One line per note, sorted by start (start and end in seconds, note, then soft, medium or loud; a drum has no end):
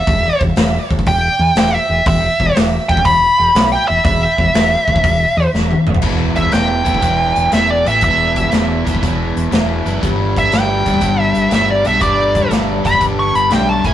0.00 0.40 E5 loud
0.07 0.28 E1 loud
0.07 kick loud
0.07 open hi-hat medium
0.41 0.51 E1 medium
0.41 kick medium
0.56 0.77 E1 medium
0.56 snare loud
0.56 open hi-hat medium
0.91 1.01 E1 medium
0.91 kick medium
0.99 kick medium
1.06 1.27 E1 medium
1.06 1.56 G5 loud
1.06 kick loud
1.06 open hi-hat medium
1.39 1.50 E2 medium
1.55 1.76 E1 loud
1.55 1.74 G5 loud
1.55 snare loud
1.55 open hi-hat medium
1.74 2.06 E5 loud
1.89 1.99 E1 loud
2.06 2.27 E1 loud
2.06 2.55 E5 loud
2.06 kick loud
2.06 open hi-hat medium
2.40 2.50 E1 medium
2.40 kick medium
2.56 2.77 E1 medium
2.56 snare loud
2.56 open hi-hat medium
2.89 2.99 E1 medium
2.89 3.05 G5 loud
2.89 kick medium
2.97 kick medium
3.05 3.26 E1 medium
3.05 3.69 B5 loud
3.05 kick loud
3.05 open hi-hat medium
3.39 3.49 E1 medium
3.55 3.75 B1 loud
3.55 snare loud
3.55 open hi-hat medium
3.72 3.87 G5 medium
3.88 3.99 E1 loud
3.88 4.04 E5 loud
4.05 4.25 E1 loud
4.05 5.50 E5 loud
4.05 kick loud
4.05 open hi-hat medium
4.38 4.48 E1 medium
4.38 kick medium
4.54 4.74 E1 medium
4.54 snare loud
4.54 open hi-hat medium
4.88 4.98 E1 medium
4.88 kick medium
4.96 kick medium
5.04 5.24 E1 medium
5.04 kick loud
5.04 open hi-hat medium
5.37 5.47 E2 medium
5.53 5.74 E1 loud
5.53 snare medium
5.71 high tom medium
5.87 5.97 E1 medium
5.87 mid tom medium
5.95 floor tom medium
6.02 6.50 E1 medium
6.02 6.51 E2 medium
6.02 6.51 B2 medium
6.02 6.52 E3 medium
6.02 kick loud
6.02 crash medium
6.36 6.53 E5 medium
6.36 kick medium
6.36 closed hi-hat medium
6.51 6.85 E1 medium
6.51 6.84 E2 medium
6.51 6.83 B2 medium
6.51 6.85 E3 medium
6.51 7.50 G5 loud
6.51 snare loud
6.51 closed hi-hat medium
6.84 7.02 E1 medium
6.84 7.00 E2 medium
6.84 7.01 B2 medium
6.84 7.02 E3 medium
6.84 kick medium
6.84 closed hi-hat medium
6.94 kick medium
7.01 7.35 E1 medium
7.01 7.50 E2 medium
7.01 7.51 B2 medium
7.01 7.52 E3 medium
7.01 kick medium
7.01 closed hi-hat medium
7.36 7.51 E1 medium
7.36 closed hi-hat medium
7.51 7.84 E1 medium
7.51 7.84 E2 medium
7.51 7.85 B2 medium
7.51 7.86 E3 medium
7.51 7.70 E5 medium
7.51 snare loud
7.51 closed hi-hat medium
7.70 7.86 D5 medium
7.85 8.01 A1 medium
7.85 8.02 E2 medium
7.85 8.03 B2 medium
7.85 8.03 E3 medium
7.85 8.03 E5 medium
7.85 closed hi-hat medium
8.01 8.50 E1 medium
8.01 8.49 E2 medium
8.01 8.50 B2 medium
8.01 8.51 E3 medium
8.01 8.52 E5 medium
8.01 kick medium
8.01 closed hi-hat medium
8.36 kick medium
8.36 closed hi-hat medium
8.50 8.84 E1 medium
8.50 8.84 E2 medium
8.50 8.85 B2 medium
8.50 8.86 E3 medium
8.50 snare loud
8.50 closed hi-hat medium
8.86 9.02 E1 medium
8.86 9.00 E2 medium
8.86 9.01 B2 medium
8.86 9.02 E3 medium
8.86 kick medium
8.86 closed hi-hat medium
8.95 kick medium
9.01 9.34 E1 medium
9.01 9.51 E2 medium
9.01 9.50 B2 medium
9.01 9.51 E3 medium
9.01 kick medium
9.01 closed hi-hat medium
9.36 9.51 E1 medium
9.36 closed hi-hat medium
9.51 9.84 E1 medium
9.51 9.84 E2 medium
9.51 9.85 B2 medium
9.51 9.86 E3 medium
9.51 snare loud
9.51 closed hi-hat medium
9.85 10.01 F#1 medium
9.85 10.00 E2 medium
9.85 10.01 B2 medium
9.85 10.02 E3 medium
9.85 closed hi-hat medium
10.00 10.50 G1 medium
10.00 10.53 G2 medium
10.00 10.52 D3 medium
10.00 10.54 G3 loud
10.00 kick loud
10.00 closed hi-hat medium
10.36 10.53 E5 medium
10.36 kick medium
10.36 closed hi-hat soft
10.52 10.84 G1 medium
10.52 10.84 G2 medium
10.52 10.84 D3 medium
10.52 10.86 G3 medium
10.52 11.21 G5 loud
10.52 snare loud
10.52 closed hi-hat medium
10.85 11.01 G1 medium
10.85 11.00 G2 medium
10.85 10.99 D3 medium
10.85 11.00 G3 medium
10.85 kick medium
10.85 closed hi-hat medium
10.94 kick medium
11.00 11.34 G1 medium
11.00 11.48 G2 medium
11.00 11.49 D3 medium
11.00 11.49 G3 loud
11.00 kick medium
11.00 closed hi-hat medium
11.21 11.50 E5 loud
11.35 11.51 G1 medium
11.35 closed hi-hat medium
11.49 11.83 G1 medium
11.49 11.82 G2 medium
11.49 11.83 D3 medium
11.49 11.84 G3 medium
11.49 11.70 E5 medium
11.49 snare loud
11.49 closed hi-hat medium
11.70 11.86 D5 medium
11.84 12.01 B1 medium
11.84 11.98 G2 medium
11.84 11.99 D3 medium
11.84 12.00 G3 medium
11.84 12.02 E5 medium
11.84 closed hi-hat medium
11.99 12.48 G1 medium
11.99 12.48 G2 medium
11.99 12.49 D3 loud
11.99 12.49 G3 loud
11.99 12.50 D5 medium
11.99 kick medium
11.99 closed hi-hat medium
12.35 kick medium
12.35 closed hi-hat medium
12.49 12.83 G1 medium
12.49 12.82 G2 medium
12.49 12.83 D3 medium
12.49 12.83 G3 medium
12.49 snare loud
12.49 closed hi-hat medium
12.83 13.00 G1 medium
12.83 12.97 G2 medium
12.83 12.98 D3 medium
12.83 12.98 G3 medium
12.83 13.02 B5 loud
12.83 kick medium
12.83 closed hi-hat medium
12.93 kick medium
12.98 13.33 G1 medium
12.98 13.48 G2 medium
12.98 13.49 D3 medium
12.98 13.49 G3 medium
12.98 kick medium
12.98 closed hi-hat medium
13.19 13.35 C#6 medium
13.35 13.50 G1 medium
13.35 13.51 B5 medium
13.35 closed hi-hat medium
13.49 13.83 B1 medium
13.49 13.82 G2 medium
13.49 13.82 D3 medium
13.49 13.82 G3 medium
13.49 13.68 G5 medium
13.49 snare loud
13.49 closed hi-hat medium
13.69 13.85 A5 medium
13.84 13.94 A1 medium
13.84 13.94 A2 medium
13.84 13.94 E3 medium
13.84 13.94 A3 loud
13.84 13.94 G#5 medium
13.84 kick medium
13.84 closed hi-hat medium